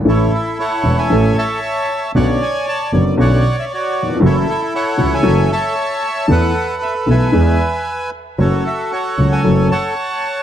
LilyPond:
<<
  \new Staff \with { instrumentName = "Bandoneon" } { \time 4/4 \key fis \minor \tempo 4 = 115 << { cis''8 e''8 fis''8. gis''8. a''4. | fis''8 gis''8 a''8 cis''8 fis''8. e''16 cis''8. r16 | cis''8 e''8 fis''8. gis''8. a''4. | fis''4 e''8 gis''2 r8 |
cis''8 e''8 fis''8. gis''8. a''4. | } \\ { <e' a'>4 <a' cis''>8. <cis'' e''>8. <cis'' e''>4. | <cis'' d''>2 <cis'' d''>4 fis'4 | <e' a'>4 <a' cis''>8. <cis'' e''>8. <cis'' e''>4. | <a' b'>4. <b' e''>2 r8 |
<fis' a'>4 <a' cis''>8. cis''8. <cis'' fis''>4. | } >> }
  \new Staff \with { instrumentName = "Upright piano" } { \clef bass \time 4/4 \key fis \minor <a,, a, e a cis' a'>8 r4 <e,, e, e a cis' a'>8 <a,, a, e a cis' a'>8 r4. | <b,, b, d b cis' fis'>8 r4 <fis,, fis, d b cis' fis'>8 <b,, b, d b cis' fis'>8 r4 r32 dis,32 e,32 f,32 | <fis, e fis a cis' fis'>8 r4 <cis, cis e a cis' fis'>8 <fis, e fis a cis' fis'>8 r4. | <e, e a b a'>8 r4 <b,, b, e a b a'>8 <e, e gis b gis'>8 r4. |
<fis, fis a cis' a'>8 r4 <cis, cis fis a cis' a'>8 <fis, fis a cis' a'>8 r4. | }
  \new Staff \with { instrumentName = "Double bass" } { \clef bass \time 4/4 \key fis \minor a,,8 r4 e,,8 a,,8 r4. | b,,8 r4 fis,,8 b,,8 r4. | fis,,8 r4 cis,8 fis,,8 r4. | e,8 r4 b,,8 e,8 r4. |
fis,,8 r4 cis,8 fis,,8 r4. | }
>>